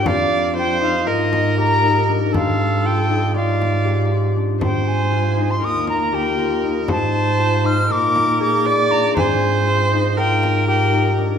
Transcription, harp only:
\new Staff \with { instrumentName = "Harp" } { \time 9/8 \key f \dorian \tempo 4. = 79 c'4 f'8 ees'8 f'4 g'8 ees'8 d'8 | c'4 f'8 ees'8 f'4 g'8 f'8 d'8 | c'4 f'8 ees'8 f'4 g'8 f'8 ees'8 | c'4 f'8 ees'8 f'4 aes'8 f'8 d'8 |
c'4 f'8 ees'8 f'4 g'8 ees'8 d'8 | }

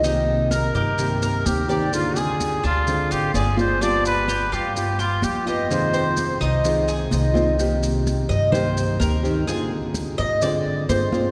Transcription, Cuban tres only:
\new Staff \with { instrumentName = "Cuban tres" } { \time 4/4 \key c \minor \tempo 4 = 127 ees'4 bes'8 g'4 bes'4 d''8~ | d''8 aes'4 d'4 f'8 d''4 | d'4 g'8 f'4 g'4 ees''8~ | ees''8 c''4 ees'4 aes'8 ees''4 |
r4. ees''8 c''4 bes'4 | aes'8 r4 ees''8 d''4 c''4 | }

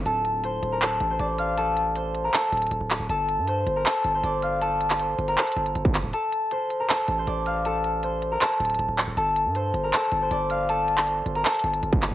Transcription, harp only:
\new Staff \with { instrumentName = "Harp" } { \time 4/4 \key d \minor \tempo 4 = 158 <a' a''>4 <c'' c'''>8. <bes' bes''>16 <a' a''>8. <c'' c'''>16 <d'' d'''>8 <f'' f'''>8 | <a' a''>4 <c'' c'''>8. <bes' bes''>16 <a' a''>2 | <a' a''>4 <c'' c'''>8. <bes' bes''>16 <a' a''>8. <c'' c'''>16 <d'' d'''>8 <f'' f'''>8 | <a' a''>4 <c'' c'''>8. <bes' bes''>16 a'2 |
<a' a''>4 <c'' c'''>8. <bes' bes''>16 <a' a''>8. <c'' c'''>16 <d'' d'''>8 <f'' f'''>8 | <a' a''>4 <c'' c'''>8. <bes' bes''>16 <a' a''>2 | <a' a''>4 <c'' c'''>8. <bes' bes''>16 <a' a''>8. <c'' c'''>16 <d'' d'''>8 <f'' f'''>8 | <a' a''>4 <c'' c'''>8. <bes' bes''>16 <a' a''>2 | }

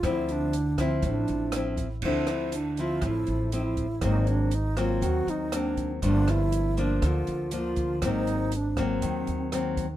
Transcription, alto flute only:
\new Staff \with { instrumentName = "Alto flute" } { \time 4/4 \key d \minor \tempo 4 = 120 e'8 d'4 c'8 d'4. r8 | d'8 e'8 d'8 f'8 e'4 e'4 | dis'8 d'8 dis'8 f'8 fis'8 dis'8 d'8. r16 | d'8 e'4 d'8 f'4 f'4 |
dis'4 d'8 bis2 r8 | }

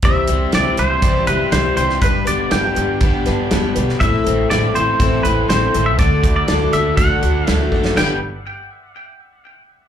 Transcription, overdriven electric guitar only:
\new Staff \with { instrumentName = "Overdriven electric guitar" } { \time 4/4 \key g \major \tempo 4 = 121 c8 g8 e'8 e8 g8 e'8 g8 e8 | g,8 b8 d'8 g8 b8 d'8 b8 g8 | a,8 c'8 e'8 e8 c'8 e'8 c'8 e8 | d8 a8 d'8 d8 a8 d'8 a8 d8 |
<g b d' b'>8 r2. r8 | }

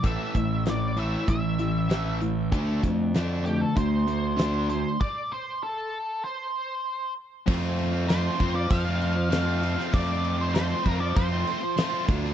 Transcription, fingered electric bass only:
\new Staff \with { instrumentName = "Fingered electric bass" } { \clef bass \time 4/4 \key f \major \tempo 4 = 97 a,,16 r16 a,,4. a,,2 | d,8 f,4. d,2 | r1 | f,4. f,8 f,2 |
f,4. f,8 f,8 r4 d,8 | }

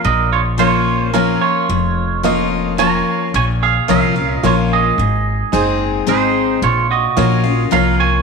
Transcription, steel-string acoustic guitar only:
\new Staff \with { instrumentName = "Steel-string acoustic guitar" } { \time 3/4 \key bes \minor \tempo 4 = 110 << { r4 <f bes des' f'>4 <f bes des' f'>4 | r4 <f bes des' f'>4 <f bes des' f'>4 | r4 <f bes des' f'>8 <des' f'>8 <f bes des' f'>4 | r4 <aes c' ees' aes'>4 <aes c' ees' aes'>4 |
r4 <f bes des' f'>8 <des' f'>8 <f bes des' f'>4 | } \\ { bes,2 r4 | f,2 r4 | bes,2 r4 | aes,2 r4 |
bes,2 r4 | } >> }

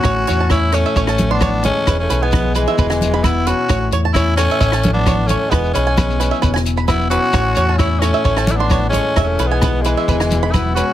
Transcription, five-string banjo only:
\new Staff \with { instrumentName = "Five-string banjo" } { \time 4/4 \key a \major \tempo 4 = 132 cis''16 r16 cis''16 a''16 cis''16 r16 cis''16 e''16 cis''16 a''16 r16 c'''16 cis''16 r8. | b'16 r16 b'16 gis''16 b'16 r16 b'16 e''16 b'16 gis''16 r16 b''16 b'16 r16 b'16 r16 | cis''16 r16 cis''16 a''16 cis''16 r16 cis''16 e''16 e''16 a''16 r8 cis''16 r16 cis''16 r16 | b'16 r16 b'16 gis''16 b'16 r16 b'16 e''16 b'16 gis''16 r16 b''16 b'16 r16 b'16 r16 |
cis''16 r16 cis''16 a''16 cis''16 r16 cis''16 e''16 cis''16 a''16 r16 c'''16 cis''16 r16 cis''16 r16 | e''16 r16 b'16 gis''16 b'16 r16 b'16 e''16 b'16 gis''16 r16 b''16 b'16 r16 b'16 r16 | }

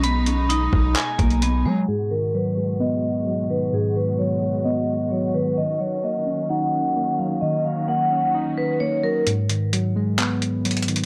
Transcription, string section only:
\new Staff \with { instrumentName = "String section" } { \clef bass \time 4/4 \key gis \minor \tempo 4 = 130 << { dis'1 | fis'1~ | fis'1~ | fis'1~ |
fis'1 | r1 | } \\ { <b, gis>1 | <b, gis>1~ | <b, gis>1 | <dis cis'>1~ |
<dis cis'>1 | r1 | } >> }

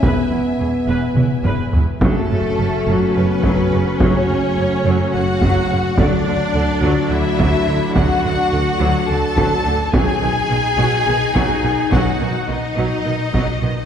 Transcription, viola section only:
\new Staff \with { instrumentName = "Viola section" } { \clef bass \time 7/8 \key fis \minor \tempo 4 = 106 << { r2. r8 | cis'2.~ cis'8~ | cis'2.~ cis'8 | d'2.~ d'8~ |
d'2.~ d'8 | dis'2.~ dis'8~ | dis'2.~ dis'8 | } \\ { b'8 e'8 gis'8 b'8 e'8 b'8 e'8 | fis8 cis8 cis8 fis8 cis8 fis8 cis8 | fis8 cis8 cis8 fis8 cis8 fis8 cis8 | fis8 d8 d8 fis8 d8 fis8 d8 |
fis8 d8 d8 fis8 d8 fis8 d8 | fis8 dis8 dis8 fis8 dis8 fis8 dis8 | fis8 dis8 dis8 fis8 dis8 fis8 dis8 | } >> }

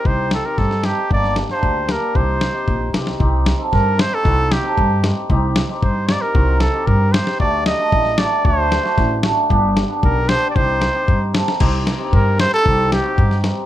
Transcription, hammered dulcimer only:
\new Staff \with { instrumentName = "Hammered dulcimer" } { \time 2/4 \tempo 4 = 114 <c' ees' g'>8 r16 <c' ees' g'>16 r8 <c' ees' a'>16 r16 | <bes d' g'>8 r16 <bes d' g'>16 r8 <bes d' g'>16 r16 | <c' ees' g'>8 r16 <c' ees' g'>16 r8 <c' ees' g'>16 r16 | <c' ees' g'>8 r16 <c' ees' a'>16 r8 <c' ees' g'>16 r16 |
<c' ees' fis'>8 r16 <c' ees' a'>16 r8 <c' ees' g'>16 r16 | <c' ees' g'>8 r16 <c' ees' g'>16 r8 <c' ees' g'>16 r16 | <c' ees' fis'>8 r16 <c' ees' g'>16 r8 <c' ees' g'>16 r16 | <a d' fis'>8 r16 <a d' fis'>16 r8 <a d' fis'>16 r16 |
<a d' fis'>8 r16 <a d' fis'>16 r8 <a d' fis'>16 r16 | <b d' g'>8 r16 <b d' g'>16 r8 <b d' g'>16 r16 | <c' ees' g'>8 r16 <c' ees' g'>16 r8 <c' ees' a'>16 r16 | <c' ees' g'>8 r16 <c' ees' g'>16 r8 <c' ees' bes'>16 r16 |
<c' ees' g'>8 r16 <c' ees' fis'>16 r8 <c' ees' g'>16 r16 | }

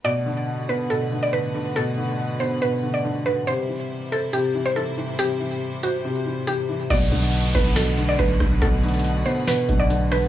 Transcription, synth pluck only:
\new Staff \with { instrumentName = "Synth pluck" } { \time 4/4 \key b \phrygian \tempo 4 = 140 d''4. b'8 a'8. d''16 b'4 | a'4. c''8 b'8. d''8. b'8 | c''4. a'8 g'8. c''16 a'4 | g'4. fis'4. g'4 |
d''4. b'8 a'8. d''16 b'4 | a'4. c''8 b'8. d''8. b'8 | }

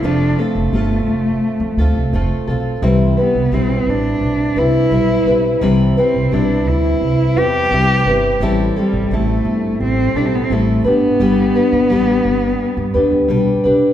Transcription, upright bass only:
\new Staff \with { instrumentName = "Upright bass" } { \clef bass \time 4/4 \key c \major \tempo 4 = 86 f,,8 r16 f,,16 g,,8 f,,8 r16 f,16 d,16 c,16 f,,16 r16 b,,8 | c,8 r16 c,16 b,,8 a,,8 b,,8 c,8 b,,8 b,,8 | c,8 r16 c,16 b,,8 d,8 c,8 e,8 c,8 g,,8 | a,,8 r16 a,,16 a,,8 g,,8 a,,8 b,,8 a,,8 g,,8 |
g,,8 r16 g,,16 a,,8 g,,8 r16 g,16 e,16 d,16 b,,8 b,,16 r16 | }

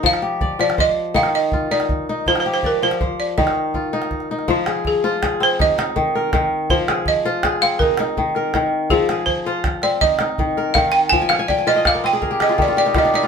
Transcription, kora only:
<<
  \new Staff \with { instrumentName = "Kora" } { \time 12/8 \key f \dorian \tempo 4. = 108 ees'8 g'8 d''4 c''4 ees'4 f'4. ees'8~ | ees'8 g'8 d''4 c''4 ees'4 f'4. ees'8 | c''8 aes'4 c''8 aes'4 ees'8 ees'4 bes'4. | c''8 aes'4 c''8 aes'4 ees'8 ees'4 bes'4. |
c''8 aes'4 c''4. ees'8 ees'4 bes'4. | g''16 aes''16 f''16 aes''16 g''16 aes''16 c''16 ees''16 d''16 bes'16 c''16 aes'16 bes'16 g'16 aes'16 f'16 g'16 f'16 g'16 ees'16 f'16 d'16 ees'16 f'16 | }
  \new Staff \with { instrumentName = "Kora" } { \clef bass \time 12/8 \key f \dorian f4 r8 f4 r8 ees4 r8 ees'4 r8 | f4 r8 f4 r8 ees4 r8 ees'4 r8 | f4 r8 f'4 c'8 r4 ees4 ees4 | f4 r8 f'4 c'8 r4 ees4 ees4 |
f4 r8 f'4 c'8 r4 ees4 ees4 | f4 r8 f'4 c'8 r4 ees4 ees4 | }
>>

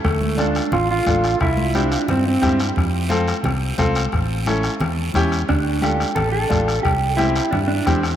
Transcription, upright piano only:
\new Staff \with { instrumentName = "Upright piano" } { \time 4/4 \key d \minor \tempo 4 = 176 r4 <d' f' a'>8 r4. <d' f' a'>8 r8 | r4 <c' e' g'>8 r4. <c' e' g'>8 r8 | r4 <c' f' a'>8 r4. <c' f' a'>8 r8 | r4 <cis' e' a'>8 r4. <cis' e' g'>8 r8 |
r4 <d' f' a'>8 r4. <d' f' a'>8 r8 | r4 <c' e' g'>8 r4. <c' e' g'>8 r8 | }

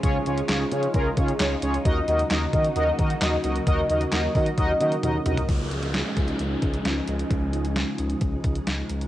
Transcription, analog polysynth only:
\new Staff \with { instrumentName = "Analog polysynth" } { \time 4/4 \key des \major \tempo 4 = 132 <des' f' aes' des''>8 <des' f' aes' des''>8 <des' f' aes' des''>8 <des' f' aes' des''>8 <des' f' aes' bes'>8 <des' f' aes' des''>8 <des' f' aes' des''>8 <des' f' aes' des''>8 | <ees' ges' bes' ees''>8 <ees' ges' bes' ees''>8 <ees' ges' bes' ees''>8 <ees' ges' bes' ees''>8 <ees' ges' bes' ees''>8 <ees' ges' bes' ees''>8 <ees' ges' bes' ees''>8 <ees' ges' bes' ees''>8 | <ees' ges' bes' ees''>8 <ees' ges' bes' ees''>8 <ees' ges' bes' ees''>8 <ees' ges' bes' ees''>8 <ees' ges' bes' ees''>8 <ees' ges' bes' ees''>8 <ees' ges' bes' ees''>8 <ees' ges' bes' ees''>8 | r1 |
r1 | }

